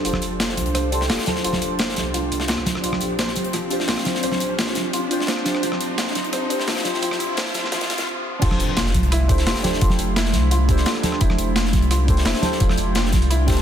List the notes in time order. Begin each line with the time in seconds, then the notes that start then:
Already playing: D4 F4 G4 A4 C5, riser
0.00 D4 G4
0.05 F1 F4 A4 C5, closed hi-hat
0.13 cross-stick, high conga
0.22 F1, closed hi-hat
0.40 F4, snare, closed hi-hat
0.49 snare
0.57 C2, closed hi-hat, high conga
0.66 closed hi-hat
0.74 C5, cross-stick, closed hi-hat
0.91 D4 G4 A4 C5, closed hi-hat
1.01 snare
1.09 F1 F4, snare, closed hi-hat, open hi-hat
1.18 cross-stick, snare
1.25 D4 G4 A4 C5, snare, closed hi-hat, high conga
1.36 snare
1.41 F1 D4 F4 G4, closed hi-hat
1.45 A4 C5
1.53 snare, high conga
1.62 F1, closed hi-hat
1.79 C5, snare, closed hi-hat
1.89 snare
1.96 C2, snare, closed hi-hat, high conga
2.14 F4, closed hi-hat
2.32 C2, closed hi-hat
2.40 snare
2.48 F4, snare, closed hi-hat
2.58 C2, cross-stick
2.66 snare, closed hi-hat, high conga
2.75 D1, cross-stick
2.81 A#1 C4 D4 F4, closed hi-hat
2.85 G4 C5
2.92 cross-stick, high conga
3.01 A#1, closed hi-hat
3.19 C5, snare, closed hi-hat
3.27 snare
3.36 F1, closed hi-hat, high conga
3.44 closed hi-hat
3.53 F3, cross-stick, closed hi-hat
3.69 D4 F4 G4 C5, closed hi-hat
3.80 snare
3.88 A#1 F4, snare, closed hi-hat, open hi-hat
3.98 cross-stick, snare
4.04 D4 F4 G4 C5, snare, closed hi-hat, high conga
4.15 snare
4.20 A#1 D4 F4 C5, closed hi-hat
4.24 G4 C5
4.32 snare, high conga
4.40 A#1, closed hi-hat
4.58 F3, snare, closed hi-hat
4.67 snare
4.75 F1, snare, closed hi-hat, high conga
4.93 F4, closed hi-hat
5.09 D4 F4 G4 C5, closed hi-hat
5.20 snare
5.27 C5, snare, closed hi-hat
5.37 cross-stick
5.44 D4 F4 G4 C5, snare, closed hi-hat, high conga
5.55 cross-stick
5.60 A#1 F3 D4 F4, closed hi-hat
5.64 G4 C5
5.72 cross-stick, high conga
5.81 A#1, closed hi-hat
5.98 F4, snare, closed hi-hat
6.07 snare
6.15 F1, snare, closed hi-hat, high conga
6.24 closed hi-hat
6.33 C5, cross-stick, closed hi-hat
6.48 D4 F4 G4 C5, closed hi-hat
6.60 snare
6.67 A#1 F3, snare, closed hi-hat, open hi-hat
6.76 cross-stick, snare
6.83 D4 F4 G4 C5, snare, closed hi-hat, high conga
6.94 snare
6.99 A#1 D4 F4, closed hi-hat
7.04 G4 C5
7.11 cross-stick, snare, high conga
7.20 A#1, closed hi-hat
7.37 C5, snare, closed hi-hat
7.46 snare
7.54 F1, snare, closed hi-hat, high conga
7.64 snare
7.72 F3, snare, closed hi-hat
7.81 snare, closed hi-hat
7.90 A#1, snare, closed hi-hat
7.98 snare, closed hi-hat
8.39 F1 A3 D4 F4 G4, kick, closed hi-hat, crash, impact
8.43 A4 C5
8.51 cross-stick, high conga
8.60 F1, closed hi-hat
8.77 F4, snare, closed hi-hat
8.86 snare
8.94 C2, kick, closed hi-hat, high conga
9.03 closed hi-hat
9.12 E4, cross-stick, closed hi-hat
9.27 D4 G4 A4 C5, kick, closed hi-hat
9.38 snare, closed hi-hat
9.47 F1 F4, snare, closed hi-hat, open hi-hat
9.56 cross-stick, snare, closed hi-hat
9.62 D4 G4 A4 C5, snare, closed hi-hat, high conga
9.73 snare
9.78 F1 D4 F4 G4, kick, closed hi-hat
9.83 A4 C5
9.90 snare, high conga
9.99 F1, closed hi-hat
10.16 E4, snare, closed hi-hat
10.25 snare
10.33 C2, snare, closed hi-hat, high conga
10.51 F4, closed hi-hat
10.67 D4 G4 A4 C5, kick, closed hi-hat
10.77 snare, closed hi-hat
10.86 F4, snare, closed hi-hat
10.95 cross-stick, closed hi-hat
11.02 D4 G4 A4 C5, snare, closed hi-hat, high conga
11.12 cross-stick
11.18 F1 D4 E4 G4, kick, closed hi-hat
11.22 A4 C5
11.30 cross-stick, high conga
11.38 F1, closed hi-hat
11.56 F4, snare, closed hi-hat
11.65 snare
11.73 C2, kick, snare, closed hi-hat, high conga
11.82 closed hi-hat
11.91 F4, cross-stick, closed hi-hat
12.07 D4 G4 A4 C5, kick, closed hi-hat
12.17 snare, closed hi-hat
12.25 F1 E4, snare, closed hi-hat, open hi-hat
12.35 cross-stick, snare, closed hi-hat
12.41 D4 G4 A4 C5, snare, closed hi-hat, high conga
12.52 snare
12.57 F1 D4 F4 G4, kick, closed hi-hat
12.64 C5
12.69 cross-stick, snare, high conga
12.78 F1, closed hi-hat
12.95 F4, snare, closed hi-hat
13.05 snare
13.13 C2, kick, snare, closed hi-hat, high conga
13.22 closed hi-hat
13.30 E4, closed hi-hat
13.46 D4 G4 A4 C5, kick, snare, closed hi-hat
13.52 snare, closed hi-hat
13.57 snare, closed hi-hat